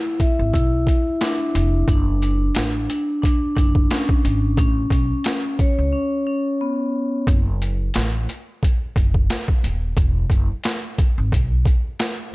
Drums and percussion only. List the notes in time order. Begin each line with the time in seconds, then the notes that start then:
0.20 kick, closed hi-hat
0.54 kick, closed hi-hat
0.87 kick, closed hi-hat
1.21 snare, closed hi-hat
1.55 closed hi-hat
1.88 kick, closed hi-hat
2.22 closed hi-hat
2.55 snare, closed hi-hat
2.90 closed hi-hat
3.23 kick, closed hi-hat
3.57 kick, closed hi-hat
3.75 kick
3.91 snare, closed hi-hat
4.09 kick
4.25 closed hi-hat
4.57 kick, closed hi-hat
4.90 kick, closed hi-hat
5.24 snare, closed hi-hat
5.59 kick, closed hi-hat
7.27 kick, closed hi-hat
7.62 closed hi-hat
7.94 snare, closed hi-hat
8.29 closed hi-hat
8.63 kick, closed hi-hat
8.96 kick, closed hi-hat
9.14 kick
9.30 snare, closed hi-hat
9.48 kick
9.64 closed hi-hat
9.97 kick, closed hi-hat
10.30 kick, closed hi-hat
10.64 snare, closed hi-hat
10.98 kick, closed hi-hat
11.32 kick, closed hi-hat
11.66 kick, closed hi-hat
11.99 snare, closed hi-hat